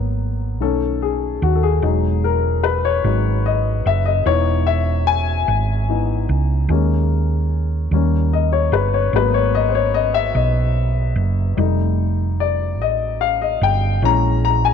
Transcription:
0.00 0.60 G#1 medium
0.00 0.56 F#3 medium
0.00 0.56 A#3 soft
0.00 0.56 B3 medium
0.60 1.37 B1 medium
0.60 1.78 D#3 soft
0.60 1.78 A3 soft
0.60 1.79 C#4 medium
0.60 0.99 A4 medium
1.02 1.43 G#4 medium
1.42 1.79 D#2 medium
1.42 1.56 F#4 medium
1.55 1.62 A4 medium
1.63 2.25 G#4 medium
1.82 3.00 E1 medium
1.82 2.36 F#3 soft
1.82 2.36 G#3 soft
1.82 2.37 D#4 medium
2.24 2.65 A#4 medium
2.63 2.84 B4 medium
2.85 3.47 C#5 medium
3.04 3.81 G#1 medium
3.04 3.41 F#3 soft
3.04 3.41 G#3 soft
3.04 3.41 D#4 soft
3.46 3.87 D#5 medium
3.86 4.23 F#1 medium
3.86 4.05 E5 medium
4.06 4.26 D#5 medium
4.25 5.44 E1 medium
4.25 4.80 E3 medium
4.25 4.80 B3 medium
4.25 4.80 D#4 medium
4.25 4.64 C#5 medium
4.67 5.08 E5 medium
5.07 7.06 G#5 loud
5.48 6.25 G#1 medium
5.89 6.25 E3 soft
5.89 6.26 B3 soft
5.89 6.26 D#4 soft
6.29 6.66 C#2 medium
6.69 7.87 D#2 medium
6.69 7.24 G#3 medium
6.69 7.24 A#3 soft
6.69 7.25 C#4 medium
7.91 8.69 D#2 medium
7.91 9.10 G3 medium
7.91 9.10 A#3 soft
7.91 9.11 C#4 medium
8.33 8.54 D#5 medium
8.53 8.74 C#5 medium
8.72 9.10 G1 medium
8.72 8.78 B4 medium
8.94 9.15 C#5 medium
9.13 10.31 G#1 medium
9.13 10.32 F#3 medium
9.13 10.32 A#3 soft
9.13 10.32 B3 medium
9.13 9.36 B4 medium
9.34 9.55 C#5 medium
9.55 9.70 D#5 medium
9.69 9.74 C5 medium
9.75 9.96 C#5 medium
9.94 10.16 D#5 medium
10.14 10.36 E5 loud
10.35 11.13 B1 medium
10.35 11.54 D#5 medium
11.16 11.54 F#1 medium
11.57 12.79 F1 medium
11.57 12.76 G3 medium
11.57 12.76 A3 medium
11.57 12.76 D#4 medium
12.40 12.82 D5 medium
12.79 13.57 A1 medium
12.79 13.23 D#5 medium
13.21 13.42 F5 medium
13.42 13.62 D#5 medium
13.61 13.99 G1 medium
13.61 14.00 G5 medium
14.02 14.74 A#1 loud
14.02 14.57 E3 medium
14.02 14.57 G#3 medium
14.02 14.57 C#4 medium
14.02 14.43 A#5 loud
14.45 14.65 A#5 loud
14.65 14.74 G#5 medium

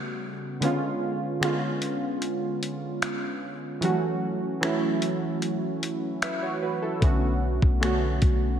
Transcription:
0.00 0.64 C#3 medium
0.00 0.64 G3 medium
0.00 0.64 A3 medium
0.00 0.63 B3 medium
0.00 0.64 F#4 medium
0.61 1.35 D3 medium
0.61 1.35 G#3 medium
0.61 1.36 B3 medium
0.61 1.36 C#4 medium
0.61 closed hi-hat medium
0.65 1.37 F4 medium
1.41 2.88 D3 medium
1.41 2.89 G#3 medium
1.41 2.90 B3 medium
1.41 2.90 C#4 medium
1.41 finger snap loud
1.41 closed hi-hat medium
1.45 2.91 F4 medium
1.82 closed hi-hat soft
2.22 closed hi-hat medium
2.63 closed hi-hat medium
3.02 finger snap loud
3.02 closed hi-hat medium
3.81 4.55 E3 medium
3.81 4.55 F#3 medium
3.81 3.89 G3 medium
3.81 4.57 C#4 medium
3.81 closed hi-hat medium
3.85 4.57 F#4 medium
3.89 4.59 A3 medium
4.61 6.08 E3 medium
4.61 6.09 F#3 medium
4.61 6.10 A3 medium
4.61 6.10 C#4 medium
4.61 finger snap loud
4.61 closed hi-hat medium
4.65 6.11 E4 medium
5.02 closed hi-hat medium
5.42 closed hi-hat medium
5.83 closed hi-hat medium
6.22 6.42 B4 soft
6.22 6.42 E5 medium
6.22 finger snap loud
6.22 closed hi-hat medium
6.42 6.62 F#4 medium
6.42 6.61 C#5 medium
6.62 6.82 F#4 medium
6.62 6.81 B4 medium
6.82 7.21 E4 medium
6.82 7.20 A4 medium
7.00 7.60 B1 loud
7.00 7.75 D3 medium
7.00 7.75 A3 medium
7.00 7.76 B3 medium
7.00 7.76 C#4 medium
7.00 kick loud
7.00 closed hi-hat medium
7.04 7.77 F#4 medium
7.62 8.20 B1 loud
7.62 kick medium
7.80 8.60 D3 medium
7.80 8.60 A3 medium
7.80 8.60 B3 medium
7.80 8.60 C#4 medium
7.80 finger snap loud
7.80 closed hi-hat medium
7.85 8.60 F#4 medium
8.22 8.60 B1 loud
8.22 kick medium
8.22 closed hi-hat medium

